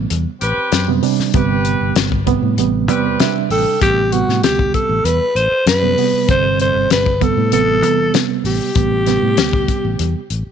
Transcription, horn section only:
0.40 C4 G4 B4
1.35 G4 B4
2.88 C4 G4 B4

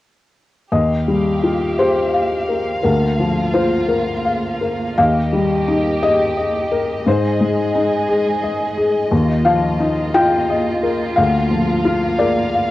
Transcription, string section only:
0.72 A#3 G4 F5
2.84 F4
4.99 G4 D#5
7.06 G#3 G#4
9.12 A#3 F4
11.18 F5

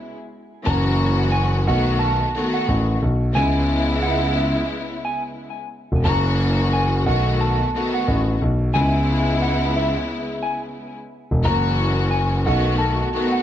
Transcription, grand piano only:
0.66 F#1
1.67 B1
2.68 A1
3.02 B1
3.36 C#2
5.92 E1
6.06 F#1
7.06 B1
8.08 A1
8.42 B1
8.76 C#2
11.31 E1
11.45 F#1
12.46 B1

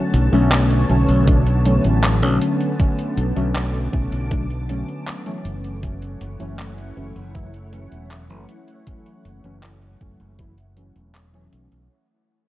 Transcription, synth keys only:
Already playing: D3 F#3 A3 C#4
0.32 D3 F#3 A3 C#4
0.89 D3 F#3 A3 C#4
1.26 D3 F#3 A3 D4
1.64 D3 F#3 A3 C#4
2.22 D3 F#3 A3 C#4
2.78 D3 F#3 A3 C#4
3.36 D3 F#3 A3 C#4
3.92 D3 F#3 A3 C#4
4.30 D3 F#3 A3 D4
4.68 D3 F#3 A3 C#4
5.25 E3 F#3 A3 C#4
5.82 E3 F#3 A3 C#4
6.39 E3 F#3 A3 C#4
6.96 E3 F#3 A3 C#4
7.34 E3 F#3 A3 E4
7.72 E3 F#3 A3 C#4
8.29 E3 F#3 A3 C#4
8.87 E3 F#3 A3 C#4
9.44 E3 F#3 A3 C#4
10.01 E3 F#3 A3 C#4
10.38 E3 F#3 A3 E4
10.76 E3 F#3 A3 C#4
11.33 E3 F#3 A3 C#4

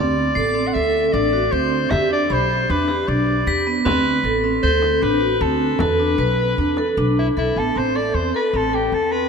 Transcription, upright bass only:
Already playing: D2
0.36 A1
0.75 D2
1.14 A1
1.52 D2
1.92 E2
2.30 B1
2.70 E2
3.08 B1
3.47 E2
3.86 D2
4.24 A1
4.63 D2
5.02 A1
5.41 D2
5.80 E2
6.18 B1
6.58 E2
6.97 B1
7.37 B1
7.56 A1
7.76 A1
8.14 E2
8.53 A1
8.92 E2

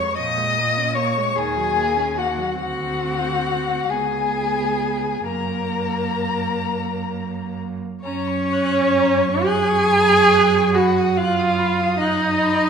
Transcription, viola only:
0.00 G#3
0.20 F3
0.38 G#3
0.57 A#3
0.77 C#4
0.97 A#3
1.17 G#3
1.37 D#3
1.56 F#3
1.76 A#3
1.96 C#4
2.15 A#3
2.38 F#3
2.59 C4
3.90 B3
5.26 A#3
8.05 C#4
9.46 G#4
10.74 F#4
11.17 F4
11.99 D#4

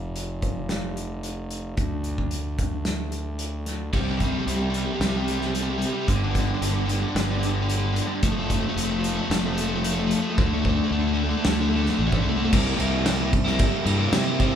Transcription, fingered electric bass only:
Already playing: F1
1.78 D2
3.94 C2
4.46 C2
5.00 C2
6.08 G1
6.61 G1
7.15 G1
8.23 F1
8.76 F1
9.30 F1
10.38 D2
10.91 D2
11.45 D2
11.99 A1
12.26 C2
12.53 C2
12.79 C2
13.85 G2
14.12 C3

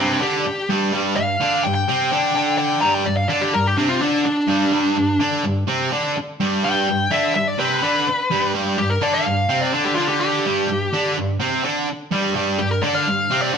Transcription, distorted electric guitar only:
Already playing: C3
0.00 C4
0.20 D3 D4
0.46 muted distorted electric guitar stroke
0.69 G2 G3
0.93 G2 G3
1.16 G2
1.41 D3 D4
1.64 G2
1.88 C3 C4
2.11 D3 D4
2.34 D3 D4
2.81 G2 G3
3.05 G2
3.29 D3 D4
3.55 G2
3.77 C3 C4
4.01 D3 D4
4.25 muted distorted electric guitar stroke
4.47 G2 G3
4.72 G2 G3
4.97 G2
5.19 D3 D4
5.43 G2
5.68 C3 C4
5.92 D3 D4
6.17 muted distorted electric guitar stroke
6.40 G2 G3
6.64 G2 G3
6.88 G2
7.11 D3 D4
7.35 G2
7.58 C3 C4
7.82 D3 D4
8.07 muted distorted electric guitar stroke
8.30 G2 G3
8.55 G2 G3
8.78 G2
9.01 D3 D4
9.26 G2
9.49 C3 C4
9.73 D3 D4
9.97 D3 D4
10.45 G2 G3
10.68 G2
10.93 D3 D4
11.17 G2
11.40 C3 C4
11.64 D3 D4
11.88 muted distorted electric guitar stroke
12.12 G2 G3
12.35 G2 G3
12.59 G2
12.82 D3 D4
13.07 G2
13.30 C3 C4
13.54 D3 D4

